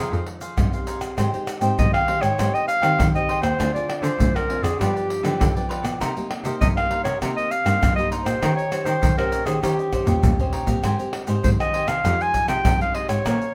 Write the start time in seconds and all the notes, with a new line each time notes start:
Already playing: F3 G#3 D#4 G#4
0.00 G#4 C5 F5
0.12 F2 G#4 C5 F5, pandeiro, shaker
0.27 muted cavaquinho stroke, pandeiro
0.41 G#4 C5 F5, pandeiro, shaker
0.57 G2 C3 D#4 G4, pandeiro, tamborim, shaker, surdo
0.73 G#4 C5 F5, pandeiro, shaker
0.87 D#4 G#4 C5 F5, pandeiro, shaker
1.01 G#4 C5 F5, pandeiro, tamborim, shaker
1.17 G#2 G#3 C4 D#4 G4 G#4 C5 D#5 G5, pandeiro, tamborim, shaker, surdo
1.33 C4 D#4 G4, pandeiro, shaker
1.47 muted cavaquinho stroke, pandeiro, tamborim, shaker
1.61 G#2 C4 D#4 G4 C5 D#5 G5, pandeiro, shaker
1.78 G#2 D#3 D#5, pandeiro, shaker, surdo
1.94 C5 D#5 F5 G5, pandeiro, tamborim, shaker
2.07 C4 D#4 G4 G#4 C5 D#5 G5, pandeiro
2.21 G#2 C5 C#5 D#5 G5, pandeiro, tamborim, shaker
2.38 G#2 G#3 C4 D#4 G4 G#4 C5 D#5 G5, pandeiro, tamborim, shaker, surdo
2.54 C5 D#5 G5, pandeiro, shaker
2.67 F5, muted cavaquinho stroke, pandeiro, shaker
2.82 D#3 C4 D#4 G4 C5 D#5 G5, pandeiro, tamborim, shaker
2.99 D#3, pandeiro, tamborim, shaker, surdo
3.14 C4 D#4 G4 C5 D#5 G5, pandeiro, shaker
3.28 G#4 C5 D#5 G5, pandeiro
3.42 D#2 C5 D#5 G5, pandeiro, tamborim, shaker
3.59 D2 D3 C4 F4 G#4 C5 D5, pandeiro, tamborim, shaker, surdo
3.74 C4 F4 G#4 D5, pandeiro, shaker
3.89 muted cavaquinho stroke, pandeiro, tamborim
3.97 D5
4.02 D3 C4 F4 G#4 C5 D5, pandeiro, shaker
4.19 D2 D3, pandeiro, shaker, surdo
4.35 G#4 A#4 C5 D5, pandeiro, tamborim, shaker
4.49 C4 F4 G#4 C5 D5, pandeiro
4.63 F2 G#4 C5 D5, pandeiro, tamborim, shaker
4.79 G2 F3 B3 D#4 F4 G4 B4 D5, pandeiro, tamborim, shaker, surdo
4.95 G4 B4 D5, pandeiro, shaker
5.09 muted cavaquinho stroke, pandeiro
5.23 D3 F3 B3 D#4 G4 B4 D5, pandeiro, tamborim, shaker
5.40 D3, pandeiro, tamborim, shaker, surdo
5.55 F3 B3 G4 B4 D5, pandeiro, shaker
5.69 F4 G4 B4 D5, pandeiro
5.83 B2 G4 B4 D5, pandeiro, tamborim, shaker
6.00 C3 A#3 D#4 G4 A#4 C5 D#5, pandeiro, tamborim, shaker, surdo
6.17 A#3 D#4 G4, pandeiro, shaker
6.30 muted cavaquinho stroke, pandeiro, tamborim
6.44 C3 A#3 D#4 G4 A#4 C5 D#5, pandeiro, shaker
6.61 G2 C3 D#5, pandeiro, shaker, surdo
6.77 A#4 C5 D#5 F5, pandeiro, tamborim, shaker
6.90 A#3 D#4 G4 A#4 C5 D#5, pandeiro
7.04 C3 A#4 C5 C#5 D#5, pandeiro, tamborim, shaker
7.21 C3 A#3 D#4 G4 A#4 C5 D#5, pandeiro, tamborim, shaker, surdo
7.37 A#4 C5 D#5, pandeiro, shaker
7.51 F5, muted cavaquinho stroke, pandeiro, shaker
7.65 G2 A#3 D#4 G4 A#4 C5 D#5, pandeiro, tamborim, shaker
7.82 G2, pandeiro, tamborim, shaker, surdo
7.96 A#3 D#4 G4 A#4 C5 D#5, pandeiro, shaker
8.11 D#4 A#4 C5 D#5, pandeiro, shaker
8.25 A#2 A#4 C5 D#5, pandeiro, tamborim, shaker
8.42 D#3 C#4 D#4 G4 C5 C#5 D#5, pandeiro, tamborim, shaker, surdo
8.56 C#5, pandeiro, shaker
8.71 C#4 G4 C5, muted cavaquinho stroke, pandeiro, tamborim, shaker
8.85 D#3 G4 C5 C#5 D#5, pandeiro, shaker
9.02 A#2 D#3, pandeiro, shaker, surdo
9.18 C#4 G4 A#4 C5 C#5 D#5, pandeiro, tamborim, shaker
9.32 D#4 G4 C#5 D#5, pandeiro, shaker
9.45 D#3 C#4 G4 G#4 C5 C#5 D#5, pandeiro, tamborim, shaker
9.62 D#3 C#4 D#4 G4 C5 C#5 D#5, pandeiro, tamborim, shaker, surdo
9.79 G4 C#5 D#5, pandeiro, shaker
9.92 C#4 G4 C5, muted cavaquinho stroke, pandeiro, tamborim, shaker, surdo
10.06 A#2 G4 C#5 D#5, surdo, pandeiro, shaker
10.23 A#2, surdo, pandeiro, shaker
10.39 C#4 G4 C5 C#5 D#5, surdo, pandeiro, shaker
10.53 D#4 G4 C#5 D#5, pandeiro
10.67 A#2 C4 G4 A#4 C#5 D#5, pandeiro, shaker, surdo
10.83 G#2 G#3 G4 C5 D#5 G#5, pandeiro, tamborim, shaker, surdo
10.99 C4 G4 A#4, pandeiro, shaker
11.13 muted cavaquinho stroke, pandeiro, tamborim
11.27 G#2 C4 G4 A#4 C5 D#5 G#5, pandeiro, shaker
11.44 G#2 D#3 C5, pandeiro, shaker, surdo
11.60 C5 D#5 G#5, pandeiro, tamborim, shaker
11.73 C4 G4 A#4 C5 D#5 G#5, pandeiro
11.87 C3 C5 D#5 F5 G#5, pandeiro, tamborim, shaker
12.04 F2 F3 G#3 D#4 F4 G4 G#4 C5 D#5, pandeiro, tamborim, shaker, surdo
12.20 G#4 C5 D#5 G#5, pandeiro, shaker
12.34 muted cavaquinho stroke, pandeiro, shaker, surdo
12.48 C3 G#3 D#4 G4 G#4 C5 D#5 G5, pandeiro, tamborim, shaker
12.65 C3, pandeiro, tamborim, shaker, surdo
12.80 G#3 D#4 G4 G#4 C5 D#5 F5, pandeiro, shaker
12.94 F4 G#4 C5 D#5, pandeiro
13.09 G#2 G#4 C5 C#5 D#5, pandeiro, tamborim, shaker
13.25 A#2 A#3 C#4 G#4 A#4 C5 C#5 F5 G#5, pandeiro, tamborim, shaker, surdo
13.41 pandeiro, shaker